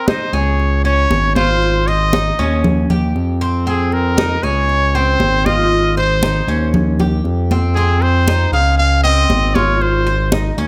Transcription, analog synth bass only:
0.33 1.06 C#2 loud
1.10 2.32 G#1 medium
2.39 2.86 D#2 loud
2.89 3.13 D#2 medium
3.15 4.37 F2 medium
4.43 5.16 C#2 loud
5.20 6.41 G#1 medium
6.47 7.20 D#2 loud
7.24 8.46 F2 medium
8.52 9.25 C#2 loud
9.29 10.51 G#1 medium
10.57 10.68 D#2 loud

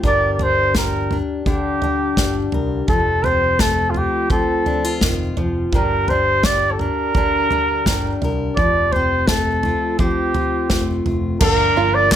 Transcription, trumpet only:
0.07 0.33 D5 medium
0.33 0.44 D5 soft
0.42 0.77 C5 medium
0.77 1.18 A#4 medium
1.48 2.50 G4 medium
2.89 3.26 A4 medium
3.25 3.62 C5 medium
3.60 3.92 A4 medium
3.90 3.99 F4 medium
3.97 4.31 G4 medium
4.32 4.98 A4 medium
5.75 6.10 A#4 medium
6.09 6.46 C5 medium
6.45 6.73 D5 medium
6.71 6.81 A4 soft
6.79 8.21 A#4 medium
8.56 8.94 D5 medium
8.92 9.29 C5 medium
9.28 9.99 A4 medium
10.00 11.02 G4 medium
11.41 11.96 A#4 medium
11.94 12.11 D5 medium
12.12 12.16 D5 loud

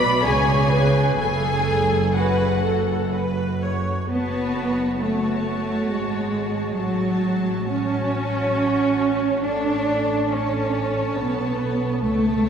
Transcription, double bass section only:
0.00 0.24 B1 medium
0.23 1.19 C#2 medium
1.19 3.85 F#1 medium
4.10 5.85 F#1 medium
5.89 6.74 G#1 medium
6.76 9.40 A1 medium
9.43 11.13 A1 medium
11.17 12.01 B1 medium
12.03 12.49 C#2 medium

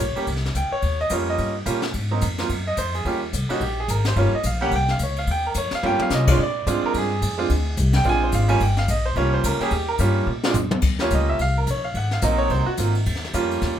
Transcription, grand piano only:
0.00 0.15 C#5 medium
0.16 0.26 G3 medium
0.16 0.26 A#3 medium
0.16 0.26 C#4 medium
0.16 0.26 G4 medium
0.56 0.72 G5 medium
0.72 0.98 C#5 medium
1.01 1.11 D#5 loud
1.10 1.51 G3 medium
1.10 1.52 A#3 medium
1.10 1.52 C#4 medium
1.10 1.52 F4 medium
1.10 1.28 C#5 medium
1.29 1.54 D#5 loud
1.66 1.81 G3 medium
1.66 1.81 A#3 medium
1.66 1.81 C#4 medium
1.66 1.81 F4 medium
2.11 2.21 F#3 medium
2.11 2.21 A#3 medium
2.11 2.21 C4 medium
2.11 2.21 D#4 medium
2.39 2.48 F#3 medium
2.39 2.49 A#3 medium
2.39 2.49 C4 medium
2.39 2.49 F4 medium
2.67 2.78 D#5 loud
2.78 2.94 C5 medium
2.95 3.05 G#4 medium
3.05 3.20 G3 medium
3.05 3.20 A#3 medium
3.05 3.20 C#4 medium
3.05 3.21 F4 medium
3.05 3.17 G4 medium
3.49 3.59 G3 medium
3.49 3.60 A#3 medium
3.49 3.60 C#4 medium
3.49 3.60 D#4 medium
3.49 3.61 F#4 medium
3.63 3.78 G4 medium
3.80 3.89 G#4 medium
3.90 4.05 A#4 medium
4.08 4.17 C5 medium
4.16 4.31 G3 medium
4.16 4.31 A#3 medium
4.16 4.31 C#4 medium
4.16 4.32 F4 medium
4.16 4.34 C#5 medium
4.35 4.45 D#5 medium
4.46 4.61 F5 medium
4.61 4.71 G3 medium
4.61 4.71 A#3 medium
4.61 4.71 C#4 medium
4.61 4.71 G4 loud
4.61 4.72 F#5 loud
4.76 4.90 G5 loud
4.91 5.00 F5 medium
5.03 5.18 C#5 medium
5.19 5.28 F5 medium
5.31 5.46 G5 loud
5.47 5.56 A#4 medium
5.58 5.73 C#5 medium
5.75 5.84 F5 loud
5.83 6.24 G3 medium
5.83 6.24 A#3 medium
5.83 6.24 C#4 medium
5.83 6.24 F4 medium
5.83 6.01 G5 loud
6.02 6.12 F5 loud
6.14 6.29 D#5 medium
6.28 6.38 G#3 medium
6.28 6.38 C4 medium
6.28 6.38 D4 medium
6.28 6.38 F4 loud
6.28 6.37 C#5 medium
6.38 6.40 C#5 medium
6.43 6.82 D5 medium
6.67 7.08 G#3 medium
6.67 7.08 C4 medium
6.67 7.08 D4 medium
6.67 7.08 F4 medium
6.86 6.95 A#4 loud
6.98 7.76 G#4 medium
7.38 7.48 G#3 medium
7.38 7.49 C4 medium
7.38 7.49 D4 medium
7.38 7.49 F4 medium
7.96 8.06 G5 loud
8.05 8.46 G#3 medium
8.05 8.46 C4 medium
8.05 8.46 D4 medium
8.05 8.47 F4 medium
8.09 8.23 G#5 loud
8.24 8.34 C5 medium
8.34 8.50 F5 loud
8.48 8.59 G3 medium
8.48 8.60 A#3 medium
8.48 8.60 C#4 medium
8.48 8.60 F4 medium
8.48 8.61 G#5 loud
8.62 8.78 G5 medium
8.79 8.89 F5 loud
8.90 9.06 D#5 medium
9.06 9.16 C5 medium
9.16 9.57 G3 medium
9.16 9.57 A#3 medium
9.16 9.58 C#4 medium
9.16 9.58 F4 medium
9.16 9.33 C#5 loud
9.34 9.44 C5 medium
9.45 9.61 A#4 medium
9.60 9.71 G3 medium
9.60 9.71 A#3 medium
9.60 9.71 C#4 medium
9.60 9.71 G4 medium
9.60 9.73 G#4 medium
9.73 9.89 G4 medium
9.88 9.95 A#4 loud
9.99 10.27 G3 medium
9.99 10.28 A#3 medium
9.99 10.28 C#4 medium
9.99 10.28 F4 medium
10.44 10.54 G#3 medium
10.44 10.54 C4 medium
10.44 10.55 D4 medium
10.44 10.55 F4 loud
11.00 11.36 G3 medium
11.00 11.37 A#3 medium
11.00 11.37 C#4 medium
11.00 11.37 F4 medium
11.00 11.12 C#5 medium
11.14 11.28 D#5 medium
11.29 11.39 E5 medium
11.41 11.56 F5 loud
11.58 11.67 A#4 medium
11.71 11.85 C#5 medium
11.84 11.95 F5 medium
11.97 12.12 F#5 medium
12.13 12.23 F5 medium
12.22 12.63 F#3 medium
12.22 12.63 A#3 medium
12.22 12.63 C4 medium
12.22 12.64 D#4 medium
12.22 12.39 D#5 medium
12.38 12.49 C#5 loud
12.51 12.67 C5 medium
12.66 12.73 F#4 medium
12.78 12.93 F#3 medium
12.78 12.93 A#3 medium
12.78 12.93 C4 medium
12.78 12.93 F4 medium
13.34 13.74 G3 medium
13.34 13.75 A#3 medium
13.34 13.75 C#4 medium
13.34 13.75 F4 loud

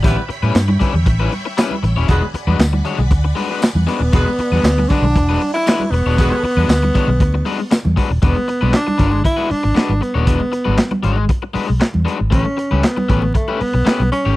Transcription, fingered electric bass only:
0.04 0.15 A1 loud
0.29 muted fingered electric bass stroke soft
0.43 0.53 A2 medium
0.55 0.76 G2 loud
0.94 1.04 E2 medium
1.06 1.27 A1 medium
1.83 1.94 A1 medium
1.97 2.07 D#1 medium
2.09 2.20 E1 loud
2.34 muted fingered electric bass stroke soft
2.47 2.57 E2 loud
2.59 2.80 D2 medium
2.98 3.11 B1 medium
3.11 3.32 D2 loud
3.75 3.85 E2 loud
4.00 4.10 D#1 medium
4.13 4.24 E1 loud
4.38 muted fingered electric bass stroke soft
4.52 4.62 E2 loud
4.63 4.85 D2 medium
5.02 5.13 B1 loud
5.15 5.36 E1 medium
5.92 6.03 E1 medium
6.06 6.18 D#1 medium
6.18 6.29 E1 loud
6.43 muted fingered electric bass stroke soft
6.57 6.67 E2 loud
6.68 6.90 D2 medium
7.08 7.18 B1 medium
7.20 7.41 D2 medium
7.86 7.95 E2 medium
8.11 8.20 D#1 medium
8.23 8.34 E1 loud
8.63 8.72 B1 medium
8.99 9.20 G1 medium
9.51 muted fingered electric bass stroke medium
9.65 9.74 G#1 medium
9.89 9.99 G#1 medium
10.15 10.27 D#1 medium
10.27 10.38 E1 medium
10.67 10.77 G#1 medium
11.04 11.25 G#1 medium
11.55 muted fingered electric bass stroke soft
11.70 11.79 B1 medium
11.95 12.05 E2 medium
12.21 12.30 G#1 medium
12.32 12.43 A1 loud
12.72 12.82 C#2 loud
13.09 13.30 A1 medium
13.61 muted fingered electric bass stroke soft
13.74 13.84 B1 medium
13.86 muted fingered electric bass stroke soft
14.00 14.10 B1 medium
14.26 14.36 G#1 medium

